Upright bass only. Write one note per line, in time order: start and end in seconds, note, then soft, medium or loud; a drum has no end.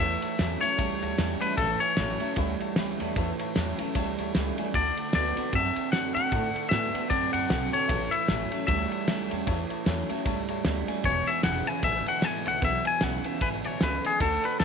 0.00 0.18 E2 loud
0.23 muted upright bass stroke medium
0.40 0.58 E2 medium
0.62 muted upright bass stroke medium
0.79 0.97 C#2 loud
1.02 1.15 D2 loud
1.18 1.37 E2 medium
1.42 muted upright bass stroke medium
1.58 1.76 A1 medium
1.81 muted upright bass stroke medium
1.98 2.16 A1 medium
2.22 muted upright bass stroke medium
2.37 2.55 D2 loud
2.61 muted upright bass stroke medium
2.78 2.96 C#2 medium
3.01 3.13 E2 medium
3.16 3.35 E2 loud
3.40 muted upright bass stroke medium
3.57 3.75 E2 medium
3.80 muted upright bass stroke medium
3.95 4.14 C#2 loud
4.18 4.31 D2 loud
4.35 4.53 C#2 medium
4.58 muted upright bass stroke medium
4.74 4.93 D2 medium
4.98 muted upright bass stroke medium
5.15 5.33 D2 medium
5.37 muted upright bass stroke medium
5.53 5.72 F#2 loud
5.76 muted upright bass stroke medium
5.92 6.11 F#2 medium
6.16 6.29 A2 medium
6.32 6.51 A2 medium
6.55 muted upright bass stroke medium
6.71 6.90 A2 medium
6.94 muted upright bass stroke medium
7.10 7.29 F#2 loud
7.34 7.47 F#2 medium
7.50 7.69 B1 medium
7.73 muted upright bass stroke medium
7.89 8.08 A1 loud
8.13 muted upright bass stroke medium
8.29 8.47 A1 medium
8.52 muted upright bass stroke medium
8.68 8.87 D2 loud
8.92 muted upright bass stroke medium
9.08 9.26 C#2 medium
9.32 9.45 E2 medium
9.47 9.66 E2 medium
9.70 muted upright bass stroke medium
9.87 10.05 E2 loud
10.10 muted upright bass stroke medium
10.26 10.44 C#2 medium
10.49 10.62 D2 loud
10.65 10.84 D2 medium
10.88 muted upright bass stroke medium
11.04 11.23 E1 loud
11.26 muted upright bass stroke medium
11.44 11.62 E1 medium
11.66 muted upright bass stroke medium
11.83 12.02 A1 medium
12.07 muted upright bass stroke medium
12.22 12.41 G#1 medium
12.45 12.59 B1 medium
12.62 12.81 B1 loud
12.85 muted upright bass stroke medium
13.02 13.20 B1 medium
13.25 muted upright bass stroke medium
13.41 13.60 G#1 loud
13.65 13.78 A1 medium
13.81 14.00 C#2 medium
14.04 muted upright bass stroke medium
14.21 14.39 D2 medium
14.44 muted upright bass stroke medium
14.60 14.64 D2 medium